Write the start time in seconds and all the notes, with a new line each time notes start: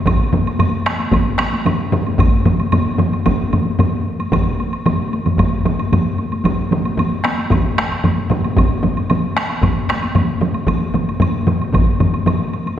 0.06 taiko, taiko low-mid, taiko mid, taiko high, high woodblock
0.33 taiko low-mid, taiko mid, taiko high, high woodblock
0.47 taiko high, high woodblock
0.59 taiko low-mid, taiko mid, taiko high, high woodblock
0.86 taiko rim, taiko high, high woodblock
0.99 taiko high, high woodblock
1.12 taiko, taiko low-mid, taiko mid, taiko high, high woodblock
1.39 taiko rim, taiko high, high woodblock
1.53 taiko high, high woodblock
1.66 taiko low-mid, taiko mid, taiko high, high woodblock
1.92 taiko low-mid, taiko mid, high woodblock
2.07 taiko high, high woodblock
2.19 taiko, taiko low-mid, taiko mid, taiko high, high woodblock
2.45 taiko low-mid, taiko mid, taiko high, high woodblock
2.60 taiko high, high woodblock
2.72 taiko low-mid, taiko mid, taiko high, high woodblock
2.99 taiko low-mid, taiko mid, taiko high, high woodblock
3.13 high woodblock
3.26 taiko, taiko low-mid, taiko mid, taiko high, high woodblock
3.53 taiko low-mid, taiko mid, taiko high, high woodblock
3.66 taiko high
3.79 taiko low-mid, taiko mid, taiko high, high woodblock
4.19 taiko high, high woodblock
4.32 taiko, taiko low-mid, taiko mid, taiko high, high woodblock
4.60 taiko high, high woodblock
4.73 high woodblock
4.86 taiko low-mid, taiko mid, taiko high, high woodblock
5.13 taiko high, high woodblock
5.26 taiko low-mid, taiko mid, taiko high, high woodblock
5.38 taiko, taiko low-mid, taiko mid, taiko high, high woodblock
5.66 taiko low-mid, taiko mid, taiko high, high woodblock
5.79 taiko high, high woodblock
5.92 taiko low-mid, taiko mid, taiko high, high woodblock
6.18 taiko high, high woodblock
6.32 taiko high, high woodblock
6.44 taiko, taiko low-mid, taiko mid, taiko high, high woodblock
6.71 taiko low-mid, taiko mid, taiko high, high woodblock
6.85 taiko high, high woodblock
6.98 taiko low-mid, taiko mid, taiko high, high woodblock
7.24 taiko rim, taiko high, high woodblock
7.38 taiko high, high woodblock
7.51 taiko, taiko low-mid, taiko mid, taiko high, high woodblock
7.78 taiko rim, taiko high, high woodblock
7.92 high woodblock
8.04 taiko low-mid, taiko mid, taiko high, high woodblock
8.30 taiko low-mid, taiko mid, high woodblock
8.44 taiko high, high woodblock
8.57 taiko, taiko low-mid, taiko mid, taiko high, high woodblock
8.83 taiko low-mid, taiko mid, taiko high, high woodblock
8.97 taiko high, high woodblock
9.10 taiko low-mid, taiko mid, taiko high, high woodblock
9.36 taiko rim, taiko high, high woodblock
9.49 taiko high, high woodblock
9.62 taiko, taiko low-mid, taiko mid, taiko high, high woodblock
9.89 taiko rim, taiko high, high woodblock
10.03 taiko high, high woodblock
10.15 taiko low-mid, taiko mid, taiko high, high woodblock
10.41 taiko low-mid, taiko mid, high woodblock
10.54 taiko high, high woodblock
10.67 taiko, taiko low-mid, taiko mid, taiko high, high woodblock
10.94 taiko low-mid, taiko mid, taiko high, high woodblock
11.08 taiko high, high woodblock
11.20 taiko low-mid, taiko mid, taiko high, high woodblock
11.47 taiko low-mid, taiko mid, taiko high, high woodblock
11.60 taiko high, high woodblock
11.73 taiko, taiko low-mid, taiko mid, taiko high, high woodblock
12.00 taiko low-mid, taiko mid, taiko high, high woodblock
12.13 taiko high, high woodblock
12.26 taiko low-mid, taiko mid, taiko high, high woodblock
12.53 high woodblock
12.66 taiko high, high woodblock